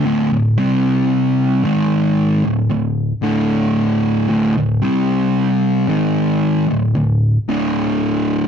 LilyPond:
\new Staff \with { instrumentName = "Distorted electric guitar" } { \clef bass \time 4/4 \key c \mixolydian \tempo 4 = 57 <d, a,>16 <d, a,>16 <c g c'>4 <gis, ees gis>8. <d, a,>16 <d, a,>8 <d, a, d>4 | <d, a,>16 <d, a,>16 <c g c'>4 <gis, ees gis>8. <d, a,>16 <d, a,>8 <d, a, d>4 | }